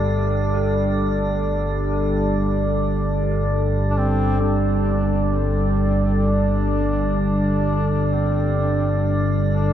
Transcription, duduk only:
3.90 D4
3.97 C4
4.42 D4
5.35 C4
6.28 D4
7.20 D4
8.13 C4
9.54 D4

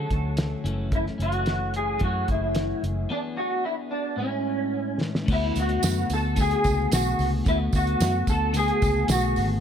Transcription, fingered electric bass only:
0.10 D2
0.64 F#1
1.19 F#1
2.01 F#2
2.28 F#1
2.83 F#1
5.28 D2
5.56 D2
5.83 F#2
6.10 D2
6.65 C#2
6.92 B1
7.19 C#2
7.46 D2
7.73 D2
8.00 F#2
8.27 D2
8.82 C#2
9.08 B1
9.36 G#1

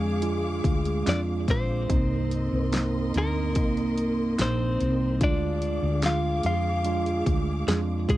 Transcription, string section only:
Already playing: G#4 F5 D6
1.90 A#4 D#5 C6
5.20 G#4 F5 D6

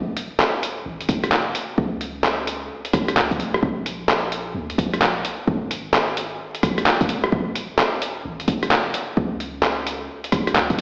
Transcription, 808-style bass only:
Already playing: D#1
0.85 G#1
1.09 F1
1.78 C#2
3.16 C#2
3.39 G#1
3.63 A#1
4.54 D2
4.78 A#1
5.47 G#1
7.09 D#1
7.32 D#1
8.25 G#1
8.48 F1
9.17 C#2
10.55 C#2

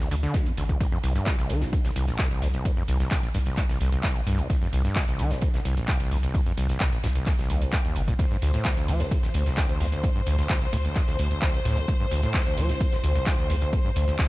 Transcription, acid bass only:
0.11 D3
0.23 D3
0.34 D2
0.46 F2
0.57 D2
0.69 D2
0.80 C2
0.92 F2
1.04 C2
1.15 G2
1.27 C2
1.39 C2
1.50 D#3
1.62 A#1
1.73 D#2
1.85 C2
1.96 C2
2.08 A#1
2.19 C2
2.31 C2
2.42 D#2
2.54 C2
2.65 D#2
2.77 F2
2.88 C2
3.00 C2
3.23 A#1
3.34 G2
3.46 C2
3.57 D#2
3.69 C2
3.81 C2
3.92 C2
4.15 A#1
4.27 G2
4.39 C2
4.50 C2
4.62 F2
4.73 C2
4.85 G2
4.96 C2
5.08 C2
5.19 D#3
5.31 A#1
5.42 D#2
5.54 C2
5.65 C2
5.77 A#1
5.88 C2
6.00 C2
6.11 D#2
6.23 C2
6.34 D#2
6.46 F2
6.58 C2
6.69 C2
6.81 C2
6.93 A#1
7.04 G2
7.16 C2
7.27 D#2
7.39 C2
7.50 D#2
7.62 C2
7.73 A#2
7.85 D#2
7.96 C2
8.08 A#2
8.19 D2
8.31 G2
8.42 D2
8.54 A2
8.65 D2
8.77 D2
8.88 F3
9.00 C2
9.11 F2
9.23 D1
9.34 D2
9.46 C2
9.57 D2
9.69 D2
9.80 F2
9.92 D2
10.04 F2
10.15 G2
10.27 D2
10.39 D2
10.50 D2
10.62 C2
10.73 A2
10.85 D2
10.96 F2
11.08 D2
11.19 D2
11.31 D2
11.42 D2
11.54 C2
11.65 A2
11.77 D2
11.88 D2
12.00 G2
12.11 D2
12.23 A2
12.35 D2
12.46 D2
12.58 F3
12.69 C2
12.81 F2
12.92 D1
13.04 D2
13.15 C2
13.27 D2
13.38 D2
13.50 F2
13.62 D2
13.73 F2
13.85 G2
13.96 D2
14.08 D2
14.19 D2

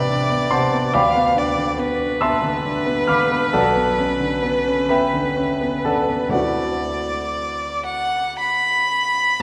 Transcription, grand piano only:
Already playing: A1 C3 B3 D4 A4 B4 D5 E5 F#5 G5 A5 B5
0.09 D4
0.30 B3
0.51 C3 C5 F#5 A5 C6
0.72 B3
0.93 D2 D5 G5 B5 D6
1.15 B3
1.35 D4
1.57 D3
1.78 B3
2.00 D4
2.21 B3 E5 A5 C6 E6
2.43 D3
2.65 D4
2.86 B3
3.07 D3 F5 B5 D6 F6
3.31 B3
3.53 B1 A4 D5 F#5 A5
3.76 B3
3.98 C#4
4.20 D3
4.42 B3
4.67 C#4
4.89 B3 B4 E5 G5 B5
5.13 D3
5.37 C#4
5.61 B3
5.85 D3 A4 D5 F#5 A5
6.09 B3
6.29 D2 D3 A3 C4 E4 F#5
6.34 F#4 B4 D5

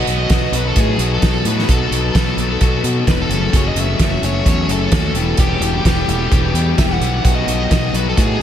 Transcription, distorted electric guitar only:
Already playing: B2 F#3
0.07 B3 D#4 F#4
0.31 F#3 B3 D#4 F#4
0.53 B3 D#4 F#4
0.76 B2 F#3 B3 D#4 F#4
0.98 B3 D#4 F#4
1.45 B3 D#4 F#4
1.69 B2 F#3 B3 D#4 F#4
1.92 B3 D#4 F#4
2.16 F#3 B3 D#4 F#4
2.39 B3 D#4 F#4
2.61 B2 F#3 B3 D#4 F#4
2.86 B3 D#4 F#4
3.31 F#2 C#3 F#3 A3 C#4 F#4
3.53 F#2 C#3 F#3 A3 C#4 F#4
3.76 F#3 A3 C#4 F#4
4.00 F#3 A3 C#4 F#4
4.23 F#3 A3 C#4 F#4
4.46 F#2 C#3 F#3 A3 C#4 F#4
4.69 F#3 A3 C#4 F#4
5.16 E2 B2 E3 G3 B3 G4
5.38 E2 B2 E3 G3 B3 G4
5.62 E3 G3 B3 G4
5.86 E3 G3 B3 G4
6.11 E3 G3 B3 G4
6.32 E2 B2 E3 G3 B3 G4
6.55 E3 G3 B3 G4
7.01 E3 G3 B3 G4
7.24 B2 F#3 B3 D#4 F#4
7.47 B3 D#4 F#4
7.70 F#3 B3 D#4 F#4
7.93 B3 D#4 F#4
8.17 B2 F#3 B3 D#4 F#4

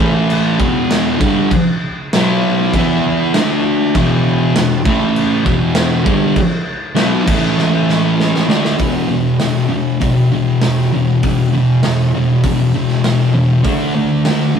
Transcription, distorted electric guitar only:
Already playing: A2
0.00 E3 A3
0.58 E2 B2 E3
1.20 G2 D3 G3
1.52 muted distorted electric guitar stroke
2.14 B2 F#3 B3
2.75 E3 B3 E4
3.35 D3 A3 D4
3.95 E2 B2 E3
4.55 E2 B2
4.85 A2 E3 A3
5.45 E2 B2 E3
6.04 G2 D3 G3
6.36 muted distorted electric guitar stroke
6.95 B2 F#3 B3
7.25 A2 E3 A3
8.47 D3 A3 D4
8.77 E2 B2 E3
9.08 E2 B2
9.40 E2 B2
9.68 E2 B2
10.00 E2 B2
10.32 E2 B2
10.62 E2 B2
10.93 E2 B2
11.23 E2 B2
11.53 E2 B2
11.84 E2 B2
12.15 E2 B2
12.45 E2 B2
12.74 E2 B2
13.05 E2 B2
13.33 E2 B2
13.64 D3 A3 D4
13.95 D3 A3
14.26 D3 A3
14.55 D3 A3

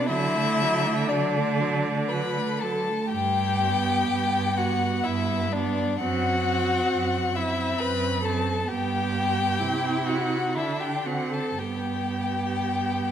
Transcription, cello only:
0.08 D3
3.12 G2
4.09 G2
5.05 G2
6.01 F#2
6.92 F#2
7.80 F#2
8.70 G2
9.61 C3
10.56 D3
11.58 G2

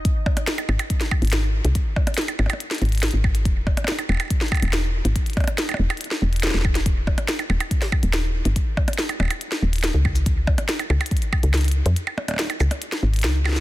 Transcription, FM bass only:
0.69 G#1
1.22 G#1
1.65 C2
2.39 G#1
2.82 G#1
3.14 G#1
3.45 E1
4.09 E1
4.62 E1
5.05 G#1
5.79 E1
6.22 E1
6.54 E1
6.86 D#1
7.50 D#1
8.03 D#1
8.45 G1
9.20 D#1
9.62 D#1
9.94 C#2
10.90 C#2
11.43 C#2
11.86 F2
12.60 C#2
13.03 G#1
13.24 C#2

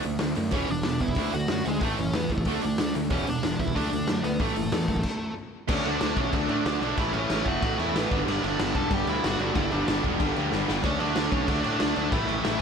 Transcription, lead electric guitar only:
0.54 C#4 C#5
0.70 D4 D5
1.01 E4 E5
1.34 F#4 F#5
1.68 G#3 G#4
1.85 A3 A4
1.99 C#4 C#5
2.14 B3 B4
2.31 A3 A4
2.62 D4 D5
3.11 C#4 C#5
3.29 D4 D5
3.59 E4 E5
3.75 D4 D5
4.23 B3 B4
4.39 A3 A4
5.70 C#4 C#5
5.86 D4 D5
6.20 C#4 C#5
6.34 D4 D5
6.82 D4 D5
6.99 E4 E5
7.13 C#4 C#5
7.47 F#4 F#5
7.79 E4 E5
7.97 B3 B4
8.28 D4 D5
8.45 D4 D5
8.75 A4 A5
8.93 G4 G5
9.09 E4 E5
9.25 F#4 F#5
9.56 E4 E5
9.72 D4 D5
10.85 C#4 C#5
11.00 D4 D5
11.31 C#4 C#5
11.49 D4 D5
11.96 D4 D5
12.12 E4 E5
12.28 E4 E5

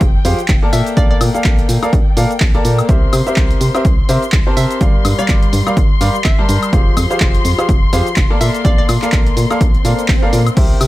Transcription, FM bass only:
0.01 F1
0.25 F2
0.49 F1
0.73 A#2
0.97 A#1
1.21 A#2
1.45 A#1
1.69 A#2
1.93 A#1
2.17 A#2
2.41 A#1
2.65 A#2
2.89 C2
3.13 C3
3.37 C2
3.61 C3
3.85 C2
4.09 C3
4.33 C2
4.57 C3
4.81 G1
5.05 G2
5.29 G1
5.53 G2
5.77 G1
6.01 G2
6.25 G1
6.49 G2
6.73 F1
6.97 F2
7.21 F1
7.45 F2
7.69 F1
7.93 F2
8.17 F1
8.41 A#2
8.65 A#1
8.89 A#2
9.13 A#1
9.37 A#2
9.61 A#1
9.85 A#2
10.09 A#1
10.33 A#2
10.57 C2
10.81 C3

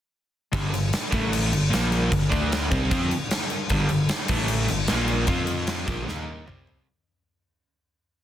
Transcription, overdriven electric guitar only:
0.52 G2 D3 G3
0.73 G2 D3
1.12 A2 E3 A3
1.53 G2 D3
1.70 A#2 F3 A#3
2.11 G2 D3
2.30 D3 A3 D4
2.71 C3 G3 C4
2.91 F3 C4 F4
3.71 G2 D3 G3
3.90 G2 D3
4.29 A2 E3 A3
4.69 G2 D3
4.89 A#2 F3 A#3
5.27 F3 C4 F4
5.86 A#2 F3 A#3
6.08 D#3 A#3 D#4
6.46 C3 G3 C4

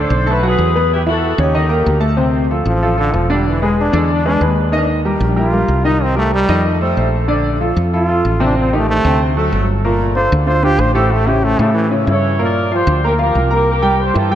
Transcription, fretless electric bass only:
0.10 B1
0.58 E2
1.38 D#2
1.86 D2
2.65 A1
3.14 E1
3.93 E2
4.41 D#2
5.20 A#1
5.68 C2
6.49 F2
6.97 A#1
7.77 F2
8.25 A1
9.05 D2
9.53 G1
10.32 D2
10.79 A1
11.59 A2
12.07 G2
12.87 D2
13.35 C2
14.15 G2

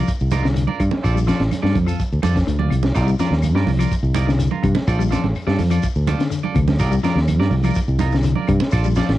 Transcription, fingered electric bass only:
0.21 C2
0.80 G2
1.04 A#1
1.40 A1
1.63 G2
1.75 F2
2.00 muted fingered electric bass stroke
2.12 D2
2.24 F2
2.47 D2
2.71 C2
2.96 C2
3.31 D#2
3.55 G2
3.67 C2
4.03 C2
4.64 G2
4.87 A#1
5.24 A1
5.47 G2
5.59 F2
5.96 D2
6.56 D2
6.80 C2
7.16 D#2
7.40 G2
7.51 C2
7.88 C2
8.49 G2
8.73 A#1
9.09 A1

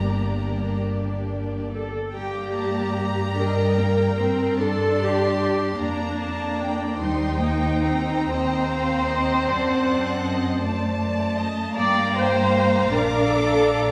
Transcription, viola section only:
Already playing: A#3 D4
1.70 A4
2.14 G4
3.36 A#4
4.59 A4
4.98 G4
5.77 D4
6.98 D#4
8.30 C5
11.76 D5
12.15 C5
12.90 A#4
13.30 A4

